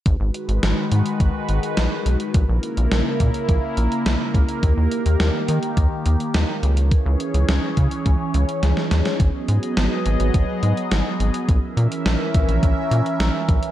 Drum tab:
HH |x-xxx-xxx-xxx-xx|x-xxx-xxx-xxx-xx|x-xxx-xxx-xxx-xx|x-xxx-xxx-xxx-xx|
SD |----o-------o---|----o-------o---|----o-------o---|----o-------oooo|
BD |o-------o-------|o-----o-o-----o-|o-------o-------|o-----o-o-------|

HH |x-xxx-xxx-xxx-xx|x-xxx-xxx-xxx-xx|
SD |----o-------o---|----o-------o---|
BD |o-------o-------|o-----o-o-----o-|